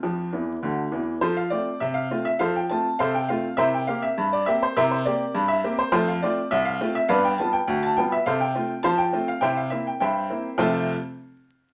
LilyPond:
<<
  \new Staff \with { instrumentName = "Upright piano" } { \time 2/4 \key f \major \tempo 4 = 102 <f'' c''' f'''>4. r8 | <f' a' c''>16 f''16 d''8 e''16 f''8 e''16 | <a' c'' f''>16 g''16 a''8 <a' c'' f''>16 g''16 f''8 | <bes' c'' e''>16 g''16 f''16 e''8 d''16 e''16 c''16 |
<bes' c'' e''>16 c''16 d''8. e''8 c''16 | <f' a' c''>16 f''16 d''8 e''16 f''8 e''16 | <b' d'' f''>16 g''16 a''16 g''8 a''16 g''16 e''16 | <a' c'' f''>16 g''8. <c'' f'' a''>16 g''8 f''16 |
<c'' e'' g''>16 f''16 e''16 g''16 <c'' e'' g''>4 | <f, c a c' f' a' f''>8 r4. | }
  \new Staff \with { instrumentName = "Upright piano" } { \time 2/4 \key f \major <f, f>8 <e, e>8 <d, d>8 <e, e>8 | f8 <a c' f'>8 c8 <a c' f'>8 | f8 <a c' f'>8 c8 <a c' f'>8 | <c e'>8 <bes c' g'>8 g,8 <bes c' g'>8 |
<c e'>8 <bes c' g'>8 g,8 <bes c' g'>8 | <f, a>8 <a c' f'>8 c,8 <a c' f'>8 | <g, b>8 <g b f'>8 d,8 <g b f'>8 | c8 <a c' f'>8 f8 <a c' f'>8 |
<c e'>8 <bes c' e'>8 g,8 <bes c' e'>8 | r2 | }
>>